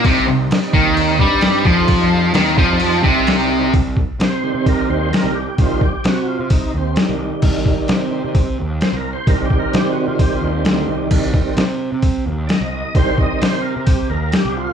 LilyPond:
<<
  \new Staff \with { instrumentName = "Tonewheel organ" } { \time 4/4 \key c \minor \tempo 4 = 130 <g c' ees'>1~ | <g c' ees'>1 | r4 c''4 bes'8 c''8 bes'8 g'8 | f'8 g'8 fis'8 f'8 ees'8 c'8 <ees g>4~ |
<ees g>2 r4 \tuplet 3/2 { c''8 bes'8 c''8 } | \tuplet 3/2 { bes'8 g'8 bes'8 g'8 fis'8 f'8 g'8 f'8 c'8~ } c'8 r8 | r2. <d'' ees''>4 | c''8 ees''8 c''8 bes'8 g'8 bes'8 g'8 f'8 | }
  \new Staff \with { instrumentName = "Tonewheel organ" } { \clef bass \time 4/4 \key c \minor r1 | r1 | r4. <ees g c'>4. <ees g c'>8 r8 | <ees g c'>8 r2. r8 |
r4. <ees g c'>8 r2 | <ees g c'>8 <ees g c'>2.~ <ees g c'>8~ | <ees g c'>8 <ees g c'>8 r2. | <ees g c'>4. r2 r8 | }
  \new Staff \with { instrumentName = "Distorted electric guitar" } { \clef bass \time 4/4 \key c \minor c8 c8 r8 ees4 g4 f8~ | f4 ees8 f4 c4. | r1 | r1 |
r1 | r1 | r1 | r1 | }
  \new Staff \with { instrumentName = "Picked electric bass" } { \clef bass \time 4/4 \key c \minor c,8 c,8 r8 ees,4 g,4 f,8~ | f,4 ees,8 f,4 c,4. | c,8 r8 c8. c8. ees,8 r16 c,8 r16 | c,8 r8 c8. c8. ees,8 r16 c,8 r16 |
c,8 r8 c8. c8. ees,8 r16 c,8 r16 | c,8 r8 c8. c8. ees,8 d,8 c,8 | c,8 r8 c8. c8. ees,8 r16 c,8 r16 | c,8 r8 c8. c8. ees,8 r16 c,8 r16 | }
  \new DrumStaff \with { instrumentName = "Drums" } \drummode { \time 4/4 <cymc bd>4 <cymc sn>8 bd8 cymc8 bd8 <cymc sn>8 bd8 | <cymc bd>4 <cymc sn>8 bd8 cymc8 bd8 <cymc sn>4 | <hho bd>8 bd8 <hho sn>4 <hho bd>4 <hho sn>4 | <hho bd>8 bd8 <hho sn>4 <hho bd>4 <hho sn>4 |
<cymc bd>8 bd8 <hho sn>4 <hho bd>4 <hho sn>4 | <hho bd>8 bd8 <hho sn>4 <hho bd>4 <hho sn>4 | <cymc bd>8 bd8 <hho sn>4 <hho bd>4 <hho sn>4 | <hho bd>8 bd8 <hho sn>4 <hho bd>4 <hho sn>4 | }
>>